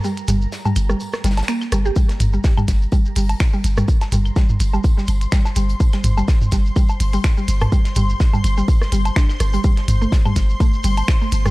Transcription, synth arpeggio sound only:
X:1
M:4/4
L:1/16
Q:"Swing 16ths" 1/4=125
K:Gm
V:1 name="Synth arpeggio sound" clef=bass
G, z G, z2 G, z G, z2 G, z B, z G, G | G, z2 G, z G, z2 G, z G, z2 G, z G, | z2 G, z G, z2 G, z G, z2 G, z G, z | z G, z G, z2 G, z G, z2 G, z G, z2 |
G, z G, z2 G, z G, z2 G, z D z2 G, | G, z2 A, z G, z2 A, z G, z2 A, z G, |]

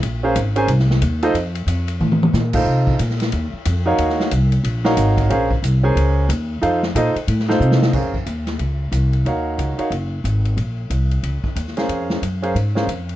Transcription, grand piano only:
X:1
M:4/4
L:1/8
Q:"Swing" 1/4=182
K:Bbm
V:1 name="Grand piano"
z [DABcf] z [DABca] z3 [EF=Ace] | z6 z [EF=Acf]- | [EF=Acf]2 z4 z [EGBdf]- | [EGBdf]2 z3 [EGBdf]3 |
[DABcf] z2 [DABca]3 z2 | [EF=Acf] z [EFAce] z2 [EFAcf]3 | [DABcf] z6 z | [EGBdf]3 [EGBdf] z4 |
z6 z [DABcf]- | [DABcf]2 z [DABcf] z [DABcf] z2 |]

